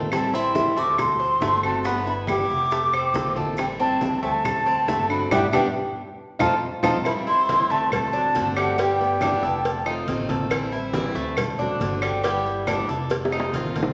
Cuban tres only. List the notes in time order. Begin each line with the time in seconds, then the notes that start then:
Already playing: A4
0.34 C4
0.77 A3
1.20 C4
1.42 A3
1.85 B3
2.28 E4
2.72 A3
2.93 C4
3.37 A4
3.80 C4
4.23 A3
4.66 C4
4.88 A3
5.31 G3 B3 D4
5.53 G3 B3 D4
6.39 C4 D#4 F4
6.83 C4 D#4 F4
7.27 E4
7.70 A3
8.13 D4
8.56 G3
8.78 G3
9.22 D4
9.43 A4
9.86 D#4
10.29 A4
10.72 E4
11.15 A3
11.59 D4
12.02 G3
12.23 G3
12.67 D4
12.89 A4
13.32 D#4
13.76 A4